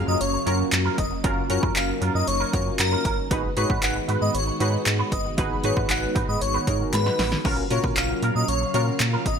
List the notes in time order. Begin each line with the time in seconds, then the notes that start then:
Already playing: C#3 F#3 A#3 C#4 F4 F#4 G#4 F5, impact
0.07 F#2 C#4 F4 A#4 D#5
0.21 F#1 C#5, closed hi-hat
0.33 muted clean electric guitar stroke
0.46 F#2 C#4 F4 F#4 A#4 C#5, closed hi-hat
0.59 muted clean electric guitar stroke
0.72 F#2, muted clean electric guitar stroke, clap, closed hi-hat
0.85 C#4 F4 A#4
0.98 F1 D#5, muted clean electric guitar stroke, kick, closed hi-hat
1.11 muted clean electric guitar stroke
1.24 F#1 C#4 D#4 F4 F#4 A#4, kick, closed hi-hat
1.50 F#2 C#4 F4 F#4 A#4 C#5, muted clean electric guitar stroke, closed hi-hat
1.62 F#2 C#4 F4 A#4, kick
1.76 F#1 F5, muted clean electric guitar stroke, clap, closed hi-hat
1.88 muted clean electric guitar stroke
2.01 F#2 C#4 F4 A#4, closed hi-hat
2.14 F#2 C#4 F4 A#4 D#5
2.27 F#1 C#5, muted clean electric guitar stroke, closed hi-hat
2.40 C#4 F4 A#4
2.53 F#2 C#4 F4 F#4 A#4 C#5, muted clean electric guitar stroke, kick, closed hi-hat
2.66 muted clean electric guitar stroke
2.79 F#2 A#4, muted clean electric guitar stroke, clap, closed hi-hat
2.92 C#4 F4 A#4
3.05 G1 C#4 F4 A#4, kick, closed hi-hat
3.18 muted clean electric guitar stroke
3.30 G#1 D#3 G#3 B3 D#4 F#4 G#4 B4, kick, closed hi-hat
3.44 muted clean electric guitar stroke
3.56 G#2 D#4 F#4 G#4 B4 C#5, muted clean electric guitar stroke, closed hi-hat
3.69 G#2 D#4 F#4 B4, kick
3.82 G#1 F#5, muted clean electric guitar stroke, clap, closed hi-hat
3.95 muted clean electric guitar stroke
4.08 G#2 D#4 F#4 B4, closed hi-hat
4.21 G#2 D#4 F#4 B4 D#5
4.34 G#1 C#5, closed hi-hat
4.47 muted clean electric guitar stroke
4.60 G#2 D#4 F#4 G#4 B4 C#5, closed hi-hat
4.73 muted clean electric guitar stroke
4.86 G#2, muted clean electric guitar stroke, clap, closed hi-hat
4.99 D#4 F#4 B4
5.12 G1 D#5, muted clean electric guitar stroke, kick, closed hi-hat
5.25 muted clean electric guitar stroke
5.37 G#1 D#4 F#4 G#4 B4, kick, closed hi-hat
5.64 G#2 D#4 F#4 G#4 B4 C#5, muted clean electric guitar stroke, closed hi-hat
5.76 G#2 D#4 F#4 B4, kick
5.89 G#1 F#5, muted clean electric guitar stroke, clap, closed hi-hat
6.02 muted clean electric guitar stroke
6.15 G#2 D#4 F#4 B4, kick, closed hi-hat
6.28 G#2 D#4 F#4 B4 D#5
6.41 G#1 C#5, muted clean electric guitar stroke, closed hi-hat
6.54 D#4 F#4 B4
6.67 G#2 D#4 F#4 G#4 A#4 C#5, muted clean electric guitar stroke, kick, closed hi-hat
6.80 muted clean electric guitar stroke
6.93 G#2 B4, muted clean electric guitar stroke, snare, clap, closed hi-hat
7.06 D#4 F#4 B4, snare
7.18 A1 D#4 F#4 B4, snare, open hi-hat
7.32 muted clean electric guitar stroke, snare
7.44 A#1 C#3 F#3 A#3 C#4 F4 F#4 A#4 F5, kick, crash
7.58 muted clean electric guitar stroke
7.70 A#2 C#4 F4 F#4 A#4 C#5, muted clean electric guitar stroke, closed hi-hat
7.84 A#2 C#4 F4 A#4, kick
7.96 A#1 F5, muted clean electric guitar stroke, clap, closed hi-hat
8.09 muted clean electric guitar stroke
8.22 A#2 C#4 F4 A#4, closed hi-hat
8.35 A#2 C#4 F4 A#4 D#5
8.48 A#1 C#5, closed hi-hat
8.61 muted clean electric guitar stroke
8.74 A#2 C#4 F4 F#4 A#4 C#5, closed hi-hat
8.87 muted clean electric guitar stroke
9.00 A#2, muted clean electric guitar stroke, clap, closed hi-hat
9.13 C#4 F4 A#4
9.26 A1 D#5, muted clean electric guitar stroke, kick, closed hi-hat